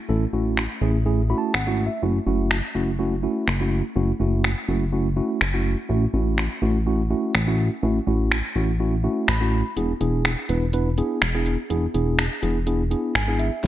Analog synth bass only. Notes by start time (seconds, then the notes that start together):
0.09 A1
0.33 A1
0.82 A1
1.54 G#1
2.02 F#1
2.27 F#1
2.75 F#1
3.48 F#1
3.96 F#1
4.20 F#1
4.69 F#1
5.41 F#1
5.89 A1
6.14 A1
6.62 A1
7.35 A1
7.83 A1
8.07 A1
8.56 A1
9.28 A1
9.77 E1
10.01 E1
10.49 E1
11.22 E1
11.70 E1
11.94 E1
12.43 E1
13.15 G#1
13.63 A1